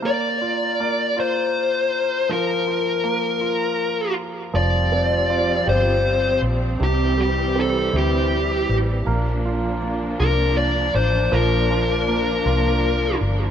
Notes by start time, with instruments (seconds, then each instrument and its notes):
0.02 grand piano A#3, lead electric guitar D5
0.41 grand piano F4
0.80 grand piano A#3
1.17 grand piano F4, lead electric guitar C5
2.29 grand piano F3, lead electric guitar A#4
2.68 grand piano F4
3.04 grand piano A#3
3.41 grand piano F4
4.54 fingered electric bass F1, grand piano F3, string section F3 G3 C4, lead electric guitar D5
4.92 grand piano C4
5.30 grand piano F4
5.66 fingered electric bass G1, grand piano G4, lead electric guitar C5
6.42 fingered electric bass A#1
6.80 fingered electric bass C2, grand piano C3, string section E3 G3, lead electric guitar G4
7.18 grand piano G3, lead electric guitar G4
7.55 grand piano C4
7.60 lead electric guitar A4
7.92 fingered electric bass D2, grand piano E4
7.97 lead electric guitar G4
8.69 fingered electric bass A1
9.07 fingered electric bass A#1, string section F3 A#3 D4, grand piano A#3
9.45 grand piano F4
9.82 grand piano A#3
10.20 fingered electric bass C2, grand piano F4, lead electric guitar A#4
10.57 lead electric guitar D5
10.95 fingered electric bass A1, lead electric guitar C5
11.32 fingered electric bass A#1, grand piano F3, string section A#3, lead electric guitar A#4
11.70 grand piano F4
12.08 grand piano A#3
12.46 fingered electric bass C2, grand piano F4
13.21 fingered electric bass G1